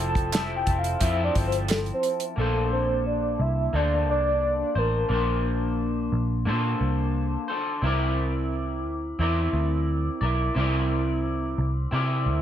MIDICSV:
0, 0, Header, 1, 5, 480
1, 0, Start_track
1, 0, Tempo, 681122
1, 1676, Time_signature, 4, 2, 24, 8
1, 8752, End_track
2, 0, Start_track
2, 0, Title_t, "Soft synth lead"
2, 0, Program_c, 0, 80
2, 0, Note_on_c, 0, 81, 111
2, 219, Note_off_c, 0, 81, 0
2, 234, Note_on_c, 0, 81, 107
2, 306, Note_off_c, 0, 81, 0
2, 394, Note_on_c, 0, 79, 96
2, 544, Note_off_c, 0, 79, 0
2, 555, Note_on_c, 0, 77, 100
2, 704, Note_off_c, 0, 77, 0
2, 714, Note_on_c, 0, 76, 102
2, 864, Note_off_c, 0, 76, 0
2, 875, Note_on_c, 0, 74, 96
2, 947, Note_off_c, 0, 74, 0
2, 1034, Note_on_c, 0, 72, 82
2, 1106, Note_off_c, 0, 72, 0
2, 1195, Note_on_c, 0, 69, 85
2, 1267, Note_off_c, 0, 69, 0
2, 1364, Note_on_c, 0, 72, 89
2, 1583, Note_off_c, 0, 72, 0
2, 1683, Note_on_c, 0, 69, 72
2, 1903, Note_off_c, 0, 69, 0
2, 1921, Note_on_c, 0, 72, 102
2, 2142, Note_off_c, 0, 72, 0
2, 2159, Note_on_c, 0, 74, 106
2, 2402, Note_on_c, 0, 76, 114
2, 2412, Note_off_c, 0, 74, 0
2, 2645, Note_on_c, 0, 74, 109
2, 2656, Note_off_c, 0, 76, 0
2, 2881, Note_off_c, 0, 74, 0
2, 2889, Note_on_c, 0, 74, 108
2, 3367, Note_on_c, 0, 70, 90
2, 3378, Note_off_c, 0, 74, 0
2, 3842, Note_off_c, 0, 70, 0
2, 8752, End_track
3, 0, Start_track
3, 0, Title_t, "Clean electric guitar"
3, 0, Program_c, 1, 27
3, 0, Note_on_c, 1, 53, 86
3, 0, Note_on_c, 1, 60, 94
3, 0, Note_on_c, 1, 64, 87
3, 0, Note_on_c, 1, 69, 88
3, 225, Note_off_c, 1, 53, 0
3, 227, Note_on_c, 1, 53, 60
3, 233, Note_off_c, 1, 60, 0
3, 235, Note_off_c, 1, 64, 0
3, 236, Note_on_c, 1, 60, 49
3, 243, Note_on_c, 1, 64, 60
3, 247, Note_off_c, 1, 69, 0
3, 250, Note_on_c, 1, 69, 64
3, 456, Note_off_c, 1, 69, 0
3, 465, Note_on_c, 1, 69, 53
3, 468, Note_off_c, 1, 64, 0
3, 471, Note_off_c, 1, 53, 0
3, 476, Note_off_c, 1, 60, 0
3, 476, Note_on_c, 1, 64, 46
3, 486, Note_on_c, 1, 60, 35
3, 702, Note_on_c, 1, 53, 90
3, 707, Note_off_c, 1, 60, 0
3, 710, Note_off_c, 1, 69, 0
3, 715, Note_on_c, 1, 60, 84
3, 716, Note_off_c, 1, 64, 0
3, 726, Note_on_c, 1, 64, 87
3, 737, Note_on_c, 1, 69, 95
3, 1661, Note_off_c, 1, 53, 0
3, 1663, Note_on_c, 1, 58, 68
3, 1674, Note_off_c, 1, 60, 0
3, 1677, Note_on_c, 1, 62, 65
3, 1681, Note_off_c, 1, 64, 0
3, 1684, Note_off_c, 1, 69, 0
3, 1688, Note_on_c, 1, 69, 77
3, 1698, Note_on_c, 1, 72, 78
3, 2625, Note_off_c, 1, 58, 0
3, 2628, Note_on_c, 1, 58, 55
3, 2634, Note_off_c, 1, 62, 0
3, 2635, Note_off_c, 1, 69, 0
3, 2636, Note_on_c, 1, 62, 62
3, 2643, Note_on_c, 1, 69, 65
3, 2646, Note_off_c, 1, 72, 0
3, 2649, Note_on_c, 1, 72, 60
3, 3347, Note_off_c, 1, 72, 0
3, 3350, Note_on_c, 1, 72, 61
3, 3360, Note_off_c, 1, 69, 0
3, 3368, Note_off_c, 1, 62, 0
3, 3371, Note_off_c, 1, 58, 0
3, 3371, Note_on_c, 1, 62, 39
3, 3586, Note_on_c, 1, 58, 79
3, 3590, Note_off_c, 1, 62, 0
3, 3593, Note_off_c, 1, 72, 0
3, 3599, Note_on_c, 1, 62, 73
3, 3619, Note_on_c, 1, 72, 73
3, 4545, Note_off_c, 1, 58, 0
3, 4548, Note_on_c, 1, 58, 70
3, 4555, Note_off_c, 1, 62, 0
3, 4558, Note_on_c, 1, 62, 71
3, 4566, Note_on_c, 1, 69, 76
3, 4568, Note_off_c, 1, 72, 0
3, 4571, Note_on_c, 1, 72, 84
3, 5269, Note_off_c, 1, 72, 0
3, 5272, Note_on_c, 1, 72, 64
3, 5275, Note_off_c, 1, 69, 0
3, 5284, Note_on_c, 1, 69, 55
3, 5291, Note_off_c, 1, 62, 0
3, 5293, Note_off_c, 1, 58, 0
3, 5294, Note_on_c, 1, 62, 52
3, 5508, Note_on_c, 1, 60, 72
3, 5515, Note_off_c, 1, 72, 0
3, 5519, Note_off_c, 1, 62, 0
3, 5521, Note_off_c, 1, 69, 0
3, 5521, Note_on_c, 1, 64, 91
3, 5532, Note_on_c, 1, 70, 92
3, 5544, Note_on_c, 1, 74, 98
3, 6473, Note_off_c, 1, 60, 0
3, 6475, Note_off_c, 1, 64, 0
3, 6475, Note_on_c, 1, 60, 64
3, 6483, Note_on_c, 1, 64, 77
3, 6488, Note_off_c, 1, 70, 0
3, 6491, Note_on_c, 1, 70, 81
3, 6495, Note_off_c, 1, 74, 0
3, 6498, Note_on_c, 1, 74, 76
3, 7191, Note_off_c, 1, 74, 0
3, 7194, Note_on_c, 1, 74, 58
3, 7201, Note_off_c, 1, 64, 0
3, 7205, Note_off_c, 1, 70, 0
3, 7208, Note_on_c, 1, 70, 54
3, 7215, Note_off_c, 1, 60, 0
3, 7217, Note_on_c, 1, 64, 44
3, 7432, Note_on_c, 1, 60, 86
3, 7434, Note_off_c, 1, 64, 0
3, 7436, Note_off_c, 1, 74, 0
3, 7443, Note_off_c, 1, 70, 0
3, 7443, Note_on_c, 1, 64, 85
3, 7455, Note_on_c, 1, 70, 101
3, 7467, Note_on_c, 1, 74, 87
3, 8391, Note_off_c, 1, 60, 0
3, 8394, Note_off_c, 1, 64, 0
3, 8394, Note_on_c, 1, 60, 64
3, 8402, Note_on_c, 1, 64, 82
3, 8407, Note_off_c, 1, 70, 0
3, 8410, Note_on_c, 1, 70, 74
3, 8414, Note_off_c, 1, 74, 0
3, 8416, Note_on_c, 1, 74, 81
3, 8752, Note_off_c, 1, 60, 0
3, 8752, Note_off_c, 1, 64, 0
3, 8752, Note_off_c, 1, 70, 0
3, 8752, Note_off_c, 1, 74, 0
3, 8752, End_track
4, 0, Start_track
4, 0, Title_t, "Picked electric bass"
4, 0, Program_c, 2, 34
4, 0, Note_on_c, 2, 29, 100
4, 447, Note_off_c, 2, 29, 0
4, 470, Note_on_c, 2, 29, 92
4, 664, Note_off_c, 2, 29, 0
4, 711, Note_on_c, 2, 41, 95
4, 905, Note_off_c, 2, 41, 0
4, 956, Note_on_c, 2, 31, 96
4, 1340, Note_off_c, 2, 31, 0
4, 1674, Note_on_c, 2, 34, 92
4, 2367, Note_off_c, 2, 34, 0
4, 2392, Note_on_c, 2, 36, 94
4, 2585, Note_off_c, 2, 36, 0
4, 2630, Note_on_c, 2, 38, 89
4, 2869, Note_off_c, 2, 38, 0
4, 2869, Note_on_c, 2, 36, 88
4, 3256, Note_off_c, 2, 36, 0
4, 3350, Note_on_c, 2, 33, 75
4, 3545, Note_off_c, 2, 33, 0
4, 3592, Note_on_c, 2, 34, 108
4, 4286, Note_off_c, 2, 34, 0
4, 4315, Note_on_c, 2, 34, 87
4, 4554, Note_on_c, 2, 46, 96
4, 4564, Note_off_c, 2, 34, 0
4, 4747, Note_off_c, 2, 46, 0
4, 4796, Note_on_c, 2, 36, 83
4, 5181, Note_off_c, 2, 36, 0
4, 5513, Note_on_c, 2, 36, 87
4, 6236, Note_off_c, 2, 36, 0
4, 6236, Note_on_c, 2, 38, 93
4, 6429, Note_off_c, 2, 38, 0
4, 6477, Note_on_c, 2, 40, 93
4, 6669, Note_off_c, 2, 40, 0
4, 6715, Note_on_c, 2, 38, 106
4, 7100, Note_off_c, 2, 38, 0
4, 7197, Note_on_c, 2, 35, 87
4, 7390, Note_off_c, 2, 35, 0
4, 7441, Note_on_c, 2, 36, 106
4, 8132, Note_off_c, 2, 36, 0
4, 8162, Note_on_c, 2, 36, 80
4, 8353, Note_off_c, 2, 36, 0
4, 8402, Note_on_c, 2, 48, 87
4, 8639, Note_on_c, 2, 38, 88
4, 8649, Note_off_c, 2, 48, 0
4, 8752, Note_off_c, 2, 38, 0
4, 8752, End_track
5, 0, Start_track
5, 0, Title_t, "Drums"
5, 108, Note_on_c, 9, 36, 83
5, 116, Note_on_c, 9, 42, 50
5, 178, Note_off_c, 9, 36, 0
5, 186, Note_off_c, 9, 42, 0
5, 232, Note_on_c, 9, 42, 104
5, 233, Note_on_c, 9, 39, 89
5, 245, Note_on_c, 9, 38, 114
5, 302, Note_off_c, 9, 42, 0
5, 304, Note_off_c, 9, 39, 0
5, 315, Note_off_c, 9, 38, 0
5, 470, Note_on_c, 9, 42, 67
5, 472, Note_on_c, 9, 36, 83
5, 541, Note_off_c, 9, 42, 0
5, 542, Note_off_c, 9, 36, 0
5, 593, Note_on_c, 9, 42, 55
5, 664, Note_off_c, 9, 42, 0
5, 709, Note_on_c, 9, 42, 98
5, 711, Note_on_c, 9, 36, 85
5, 779, Note_off_c, 9, 42, 0
5, 782, Note_off_c, 9, 36, 0
5, 954, Note_on_c, 9, 42, 75
5, 955, Note_on_c, 9, 36, 82
5, 1025, Note_off_c, 9, 36, 0
5, 1025, Note_off_c, 9, 42, 0
5, 1073, Note_on_c, 9, 42, 49
5, 1144, Note_off_c, 9, 42, 0
5, 1187, Note_on_c, 9, 42, 75
5, 1192, Note_on_c, 9, 39, 68
5, 1206, Note_on_c, 9, 38, 102
5, 1257, Note_off_c, 9, 42, 0
5, 1263, Note_off_c, 9, 39, 0
5, 1277, Note_off_c, 9, 38, 0
5, 1311, Note_on_c, 9, 42, 33
5, 1382, Note_off_c, 9, 42, 0
5, 1431, Note_on_c, 9, 42, 62
5, 1502, Note_off_c, 9, 42, 0
5, 1550, Note_on_c, 9, 42, 54
5, 1621, Note_off_c, 9, 42, 0
5, 8752, End_track
0, 0, End_of_file